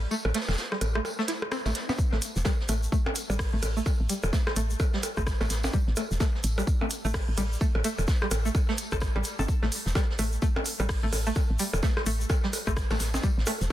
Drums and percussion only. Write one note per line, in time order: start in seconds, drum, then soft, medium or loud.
0.11 tambourine medium
0.25 percussion blips medium
0.34 snare medium
0.34 closed hi-hat medium
0.34 tambourine medium
0.41 snare medium
0.41 tambourine medium
0.48 snare medium
0.48 tambourine medium
0.48 percussion blips soft
0.53 snare medium
0.53 tambourine medium
0.58 snare loud
0.58 tambourine medium
0.72 cross-stick medium
0.72 snare soft
0.81 closed hi-hat medium
0.81 tambourine medium
0.81 percussion blips medium
0.95 cross-stick medium
1.05 tambourine medium
1.05 percussion blips soft
1.19 snare medium
1.28 snare loud
1.28 closed hi-hat medium
1.28 tambourine medium
1.42 cross-stick medium
1.42 percussion blips medium
1.51 cross-stick loud
1.51 snare loud
1.51 tambourine medium
1.65 snare loud
1.65 tambourine medium
1.65 percussion blips soft
1.75 snare loud
1.75 closed hi-hat medium
1.75 tambourine medium
1.89 snare loud
1.89 tambourine medium
1.89 percussion blips medium
1.98 kick loud
1.98 tambourine medium
1.98 shaker soft
2.12 snare soft
2.12 percussion blips soft
2.22 closed hi-hat medium
2.22 tambourine medium
2.22 shaker loud
2.36 snare soft
2.36 shaker medium
2.45 kick loud
2.45 snare loud
2.45 tambourine loud
2.45 percussion blips medium
2.45 shaker soft
2.60 snare soft
2.69 closed hi-hat medium
2.69 tambourine medium
2.69 percussion blips soft
2.69 shaker medium
2.83 shaker medium
2.92 kick loud
2.92 tambourine medium
2.92 shaker soft
3.06 percussion blips medium
3.15 closed hi-hat medium
3.15 tambourine medium
3.15 shaker medium
3.30 percussion blips soft
3.30 shaker medium
3.39 kick loud
3.39 cross-stick loud
3.39 snare loud
3.39 open hi-hat medium
3.39 shaker soft
3.62 closed hi-hat loud
3.62 tambourine medium
3.62 percussion blips medium
3.62 shaker medium
3.77 shaker soft
3.86 kick loud
3.86 tambourine loud
3.86 percussion blips soft
3.86 shaker soft
4.09 closed hi-hat loud
4.09 tambourine medium
4.09 shaker medium
4.23 percussion blips medium
4.23 shaker medium
4.33 kick loud
4.33 snare loud
4.33 tambourine loud
4.33 shaker soft
4.47 cross-stick medium
4.47 snare soft
4.47 percussion blips soft
4.56 closed hi-hat medium
4.56 tambourine medium
4.56 shaker loud
4.70 shaker medium
4.80 kick loud
4.80 tambourine medium
4.80 percussion blips medium
4.80 shaker soft
4.93 snare medium
5.03 closed hi-hat medium
5.03 tambourine medium
5.03 percussion blips soft
5.03 shaker medium
5.17 kick medium
5.17 cross-stick medium
5.17 shaker medium
5.27 kick loud
5.27 cross-stick loud
5.27 snare loud
5.27 tambourine medium
5.27 shaker soft
5.41 snare loud
5.41 tambourine medium
5.41 percussion blips medium
5.50 snare loud
5.50 closed hi-hat loud
5.50 tambourine medium
5.50 shaker medium
5.63 snare loud
5.63 tambourine medium
5.63 percussion blips soft
5.63 percussion blips medium
5.63 shaker medium
5.73 kick loud
5.73 tambourine medium
5.73 shaker soft
5.88 snare soft
5.96 closed hi-hat loud
5.96 tambourine medium
5.96 percussion blips medium
5.96 shaker medium
6.11 snare soft
6.11 shaker medium
6.20 kick loud
6.20 snare loud
6.20 tambourine medium
6.20 percussion blips soft
6.20 shaker soft
6.35 snare soft
6.44 closed hi-hat medium
6.44 tambourine medium
6.44 shaker loud
6.58 percussion blips medium
6.58 shaker medium
6.67 kick loud
6.67 tambourine medium
6.67 shaker soft
6.81 percussion blips soft
6.81 percussion blips medium
6.90 closed hi-hat loud
6.90 tambourine medium
6.90 shaker loud
7.05 shaker medium
7.14 kick loud
7.14 cross-stick loud
7.14 snare loud
7.14 open hi-hat medium
7.14 percussion blips medium
7.38 closed hi-hat loud
7.38 tambourine medium
7.38 percussion blips soft
7.38 shaker loud
7.53 shaker medium
7.61 kick loud
7.61 tambourine medium
7.61 shaker soft
7.75 percussion blips medium
7.84 closed hi-hat loud
7.84 tambourine medium
7.84 shaker medium
7.98 percussion blips soft
7.98 shaker medium
8.07 kick loud
8.07 snare loud
8.07 tambourine medium
8.07 shaker soft
8.22 cross-stick medium
8.22 snare soft
8.31 closed hi-hat medium
8.31 tambourine medium
8.31 percussion blips medium
8.31 shaker loud
8.46 shaker medium
8.55 kick loud
8.55 tambourine medium
8.55 percussion blips soft
8.55 shaker soft
8.69 snare medium
8.78 closed hi-hat medium
8.78 tambourine medium
8.78 shaker medium
8.92 kick medium
8.92 cross-stick medium
8.92 percussion blips medium
8.92 shaker medium
9.00 kick loud
9.00 cross-stick loud
9.00 snare loud
9.00 tambourine medium
9.00 shaker soft
9.16 percussion blips soft
9.24 closed hi-hat loud
9.24 tambourine medium
9.24 shaker loud
9.39 percussion blips medium
9.39 shaker medium
9.48 kick loud
9.48 tambourine medium
9.48 shaker soft
9.63 snare soft
9.63 percussion blips soft
9.72 open hi-hat medium
9.72 tambourine medium
9.72 shaker medium
9.86 snare soft
9.86 shaker soft
9.95 kick loud
9.95 snare loud
9.95 tambourine medium
9.95 percussion blips medium
9.95 shaker soft
10.10 snare soft
10.19 open hi-hat medium
10.19 tambourine medium
10.19 percussion blips soft
10.19 shaker loud
10.32 shaker soft
10.42 kick loud
10.42 tambourine medium
10.42 shaker soft
10.56 percussion blips medium
10.64 open hi-hat medium
10.64 tambourine medium
10.64 shaker medium
10.79 percussion blips soft
10.79 shaker medium
10.89 kick loud
10.89 cross-stick loud
10.89 snare loud
10.89 open hi-hat medium
10.89 shaker soft
11.13 open hi-hat medium
11.13 tambourine medium
11.13 percussion blips medium
11.13 shaker medium
11.26 shaker medium
11.35 kick loud
11.35 tambourine medium
11.35 percussion blips soft
11.35 shaker soft
11.59 open hi-hat medium
11.59 tambourine medium
11.59 shaker medium
11.73 percussion blips medium
11.73 shaker medium
11.82 kick loud
11.82 snare loud
11.82 tambourine medium
11.82 shaker soft
11.97 cross-stick medium
11.97 snare soft
11.97 percussion blips soft
12.06 open hi-hat medium
12.06 tambourine medium
12.06 shaker medium
12.20 shaker medium
12.29 kick loud
12.29 tambourine medium
12.29 percussion blips medium
12.29 shaker soft
12.43 snare medium
12.53 open hi-hat medium
12.53 tambourine medium
12.53 percussion blips soft
12.53 shaker medium
12.67 kick medium
12.67 cross-stick medium
12.67 shaker soft
12.76 kick loud
12.76 cross-stick loud
12.76 snare loud
12.76 tambourine medium
12.76 shaker soft
12.90 snare loud
12.90 tambourine medium
12.90 percussion blips medium
12.99 snare loud
12.99 open hi-hat medium
12.99 tambourine medium
12.99 shaker medium
13.14 snare loud
13.14 tambourine medium
13.14 percussion blips soft
13.14 percussion blips medium
13.14 shaker medium
13.23 kick loud
13.23 tambourine loud
13.23 shaker soft
13.39 snare soft
13.46 open hi-hat medium
13.46 tambourine medium
13.46 percussion blips medium
13.46 shaker loud
13.61 snare soft
13.61 shaker medium